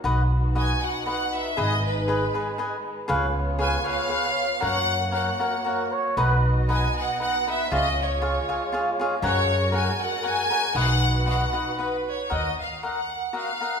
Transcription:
0.03 B1 D#4 F#4 B4 D#5 F#5
0.55 F#4 B4 D#5 F#5 G#5
0.83 F#5
1.06 F#4 B4 D#5 F#5
1.35 E5
1.57 G#1 G#3 G#4 B4 D#5 G#5
1.85 B4
2.08 G#4 B4 D#5 G#5
2.34 G#4 B4 D#5 G#5
2.58 G#4 B4 D#5 G#5
3.08 C#2 B3 F4 G#4 B4 C#5 F5
3.59 G#4 B4 C#5 F5 G#5
3.84 G#4 B4 C#5 F5
3.89 F5
4.09 G#4 B4 C#5 F5
4.60 F#2 A#3 F#4 A#4 C#5 F#5
5.11 F#4 A#4 C#5 F#5
5.40 F#4 A#4 C#5 F#5
5.65 F#4 A#4 C#5 F#5
5.92 C#5
6.17 B1 B3 D#4 B4 D#5 F#5
6.69 D#4 B4 D#5 F#5 G#5
6.98 F#5
7.20 D#4 B4 D#5 F#5
7.47 D#4 B4 D#5 E5 F#5
7.71 C#2 G#3 F4 G#4 C#5 D#5 F5
8.00 C#5
8.22 F4 G#4 C#5 F5
8.48 F4 G#4 C#5 F5
8.72 F4 G#4 C#5 F5
9.00 F4 G#4 C#5 F5
9.22 F#2 F#4 A#4 C#5 F#5 G#5
9.72 A#4 C#5 F#5 G#5
10.01 F#5
10.23 A#4 C#5 F#5 G#5
10.50 A#4 C#5 F#5 G#5
10.75 B1 D#4 F#4 B4 D#5 F#5
11.26 F#4 B4 D#5 F#5
11.53 F#4 B4 D#5 F#5
11.78 F#4 B4 D#5 F#5
12.08 C#5
12.30 D#2 F#4 A#4 D#5 F#5
12.60 F5
12.83 F#4 A#4 D#5 F#5
13.33 F#4 A#4 D#5 F#5
13.37 F5
13.60 F#4 A#4 D#5 F#5

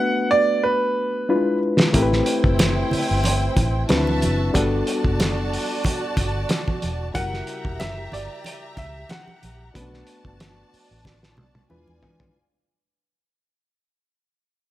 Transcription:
Already playing: A3 B3 D4 F#4 B4 F#5
0.31 D5
0.63 B4
1.29 G3 D4 E4 F4 B4
1.35 G#3
1.80 snare
1.93 A1 A3 C4 E4 G4 A#4 C5 G5, kick, closed hi-hat, muted conga
2.02 B4
2.12 snare
2.26 closed hi-hat
2.44 F#1, kick
2.59 snare, closed hi-hat, high conga
2.91 muted fingered electric bass stroke, open hi-hat, low conga
3.11 G1
3.24 closed hi-hat, muted conga
3.57 A1, kick, closed hi-hat, muted conga
3.89 D2 F#3 C4 D4 E4 F#4 B4 E5 A5, snare, closed hi-hat, high conga
4.07 high conga
4.22 F#1, closed hi-hat, high conga
4.54 G1 G3 B3 D4 F#4 A4 D5 A5, kick, closed hi-hat, muted conga
4.87 closed hi-hat
5.04 F#1, kick
5.20 snare, closed hi-hat, high conga
5.53 open hi-hat
5.84 kick, closed hi-hat, muted conga
6.17 G1, kick, closed hi-hat, muted conga, low conga
6.49 snare, closed hi-hat, high conga
6.67 kick, high conga
6.82 E1, closed hi-hat, high conga
7.14 F#1 C#3 G3 E4 F#4 G4 A#4 E5 F#5 A#5, kick, closed hi-hat, muted conga
7.34 snare
7.47 closed hi-hat
7.65 E1, kick
7.80 F#1 E5, snare, closed hi-hat, high conga
8.12 G1 D5, closed hi-hat, low conga
8.44 closed hi-hat, muted conga
8.77 C#2 E5, kick, closed hi-hat, muted conga
9.09 F#5, snare, closed hi-hat, high conga
9.27 high conga
9.43 A#1, closed hi-hat, high conga
9.74 B1 A3 B3 C#4 F#4 B4 D5 A5, kick, closed hi-hat
9.82 D4
9.94 snare
10.07 closed hi-hat
10.25 G1, kick
10.40 snare, closed hi-hat, high conga
10.74 muted fingered electric bass stroke, open hi-hat
10.91 A1
11.05 kick, snare, muted conga
11.23 snare
11.37 B1, high tom, muted conga, low conga
11.55 high tom
11.70 E2 G#3 D4 E4 F4 B4 D5 G#5, high conga
11.88 E2, high conga
12.02 E3, floor tom, high conga
12.20 floor tom

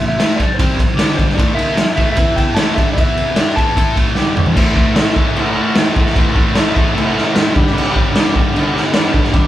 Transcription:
0.01 A2 E3
0.08 E5
0.15 E4 A4 C5
0.19 A2 E3 A3, snare, ride
0.36 D5, muted distorted electric guitar stroke, kick, ride
0.54 C5
0.59 C3 G3 C4 E4 A4 C5, kick, ride
0.79 kick, ride
0.95 G2 D3 G3 D4 G4 D5
0.99 snare, ride
1.17 C5, kick, ride
1.30 snare
1.34 A2 E3 A3 D5
1.39 E4 A4 C5, kick, ride
1.54 D#3 A#3 D#4 E5
1.59 ride
1.75 E4 C5, muted distorted electric guitar stroke, snare, ride
1.80 A4
1.96 A2 E3 A3 E5, kick, ride
2.12 E4 E5
2.16 E3 B3 E4 B4, kick, ride
2.36 G5, kick, ride
2.55 A2 E3 A4 C5 E5 A5, snare, ride
2.59 A3
2.75 G2 D3 G3 E5, kick, ride
2.93 E3 E4 B4 E5
2.97 B3, kick, ride
3.17 ride
3.36 G3 D4 E4 G4 A4 C5, snare, ride
3.55 E3 B3 E4 A5, kick, ride
3.77 A3 E4 A4 C5, kick, ride
3.97 A2 E3 A3, kick, ride
4.15 G2 D3 G3 D4 G4 D5, snare
4.37 mid tom
4.46 floor tom
4.53 A2 E3 A3, kick, crash
4.57 E4 A4 C5
4.75 A2 E3 A3, kick
4.94 A2 E3 A3 E4 A4 C5, snare, crash
5.16 A2 E3 A3, kick
5.36 A2 E3 A3 E4 A4 C5, crash
5.55 A2 E3 A3
5.75 A2 E3 A3 E4 A4 C5, snare, crash
5.95 A2 E3 A3, kick
6.06 snare
6.15 A2 E3 A3 E4 A4 C5, kick, crash
6.33 A2 E3 A3, kick
6.55 A2 E3 A3 E4 A4 C5, snare, crash
6.73 A2 E3 A3, kick
6.93 A2 E3 A3 E4 A4
6.97 C5, crash
7.10 A2 E3 A3
7.17 snare
7.33 A2 E3 A3 E4 A4 C5, snare, crash
7.53 G2 D3 G3 D4, kick
7.57 G4 B4
7.67 snare
7.72 G2 D3 G3
7.78 crash
7.91 G2 D3 G3
7.96 kick
8.13 G2 D3 G3 D4 G4 B4, snare, crash
8.35 G2 D3 G3, kick
8.53 G2 D3 G3 D4 G4 A4, crash
8.73 G2 D3 G3, snare
8.93 G2 D3 G3 D4 G4 B4, snare, crash
9.12 G2 D3 G3, kick
9.24 snare
9.31 G2 D3 G3 D4 G4 B4, kick, crash

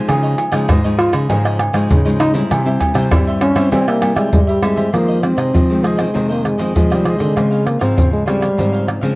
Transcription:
Already playing: F3 G#3 D#4
0.08 C#3 F4 G#4 C#5 D#5, pandeiro, tamborim, low agogo, shaker, surdo
0.23 G#4 C#5 D#5, pandeiro, shaker
0.38 muted cavaquinho stroke, pandeiro, low agogo
0.52 C#3 F3 G#3 D#4 G#4 C#5 D#5, pandeiro, tamborim, shaker
0.68 G#2 F4 G#4 C#5 D#5, pandeiro, tamborim, high agogo, shaker, surdo
0.84 F3 G#3 D#4 G#4 C#5 D#5, pandeiro, shaker
0.98 F4, pandeiro, tamborim, high agogo, shaker
1.12 C#3 G#4 C#5 D#5, pandeiro, tamborim, high agogo, shaker
1.29 G#2 C#3 F3 G#3 D#4 F4 G#4 C#5 D#5, pandeiro, low agogo, shaker, surdo
1.45 G#4 C#5 D#5, pandeiro, tamborim, shaker
1.59 muted cavaquinho stroke, pandeiro, tamborim, low agogo, shaker
1.73 G#2 F3 G#3 D#4 G#4 C#5 D#5, pandeiro, tamborim, shaker
1.90 G#2 C#3, pandeiro, shaker, surdo
2.05 F3 G#3 D#4 G#4 C#5 D#5, pandeiro, shaker
2.19 D#4, pandeiro, tamborim, high agogo
2.33 G3 C4 E4 G#4 C#5 D#5, pandeiro, shaker
2.50 C3 E4 G4 C5 E5, pandeiro, tamborim, low agogo, shaker, surdo
2.65 G3 C4 E4 G4 C5 E5, pandeiro, shaker
2.81 muted cavaquinho stroke, pandeiro, low agogo, surdo
2.94 C3 G3 C4 E4 G4 C5 E5, pandeiro, tamborim, shaker
3.11 G2 G3 E4 G4 C5 E5, pandeiro, tamborim, high agogo, shaker, surdo
3.27 G4 C5 E5, pandeiro, shaker
3.41 C#4, pandeiro, tamborim, high agogo, shaker
3.55 G3 C4 E4 G4 C5 E5, pandeiro, tamborim, high agogo, shaker
3.72 C3 G3 C4 E4 G4 C5 E5, pandeiro, low agogo, shaker, surdo
3.88 A#3 G4 C5 E5, pandeiro, tamborim, shaker
4.01 G3 C4 E4, muted cavaquinho stroke, pandeiro, tamborim, low agogo
4.16 G3 G#3 G4 C5 E5, pandeiro, tamborim, shaker
4.33 G2 G3 G#3, pandeiro, shaker, surdo
4.47 G3 G4 C5 E5, pandeiro, shaker
4.62 G3 G#3 C4 E4, pandeiro, tamborim, high agogo, shaker
4.76 G4 C5 E5, pandeiro, shaker
4.93 F2 D#3 F3 G#3 A#3 C4 F4 G#4 C5 D#5, pandeiro, tamborim, shaker, surdo
5.08 G#4 C5 D#5, pandeiro, shaker
5.22 D#3 G#3 C4, muted cavaquinho stroke, pandeiro, tamborim, shaker
5.37 C3 G#4 C5 D#5, pandeiro, tamborim, shaker
5.53 C3 F3 F4 G#4 C5 D#5, pandeiro, shaker, surdo
5.70 D#3 G#3 C4, pandeiro, shaker
5.83 G#3 F4 G#4 C5 D#5, pandeiro, tamborim
5.97 D#3 G#3 C4 G#4 C5 D#5, pandeiro, tamborim, shaker
6.14 F2 C3 D#3 G#3 C4 F4 G#4 C5 D#5, pandeiro, shaker, surdo
6.29 A#3 G#4 C5 D#5, pandeiro, shaker
6.44 G#3, muted cavaquinho stroke, pandeiro, tamborim, shaker
6.58 D#3 F3 G#3 C4 G#4 C5 D#5, pandeiro, shaker
6.75 C3 F3 G#3, pandeiro, shaker, surdo
6.90 D#3 G3 G#3 C4 G#4 C5 D#5, pandeiro, tamborim, shaker
7.04 G#3 F4 G#4 C5 D#5, pandeiro, tamborim, shaker
7.18 D3 G#4 C5 D#5, pandeiro, shaker
7.36 C#3 F3 G#3 C4 F4 C5 C#5 F5, pandeiro, tamborim, shaker, surdo
7.51 C5 C#5 F5, pandeiro, shaker
7.65 A#3, muted cavaquinho stroke, pandeiro, tamborim
7.79 G#2 F3 G#3 C4 C5 C#5 F5, pandeiro, tamborim, shaker
7.96 G#2 C#3 F4 C5 C#5 F5, pandeiro, shaker, surdo
8.13 G#3, pandeiro, shaker
8.26 F3 G3 G#3 C4 F4 C5 C#5 F5, pandeiro, tamborim, shaker
8.40 C5 C#5 F5, pandeiro, tamborim, shaker
8.57 G#2 C#3 F3 C4 F4 C5 C#5 F5, pandeiro, shaker, surdo
8.72 C5 C#5 F5, pandeiro, shaker
8.87 muted cavaquinho stroke, pandeiro, tamborim
9.01 C#3 F3 G#3 C4 C5 C#5 F5, pandeiro, shaker

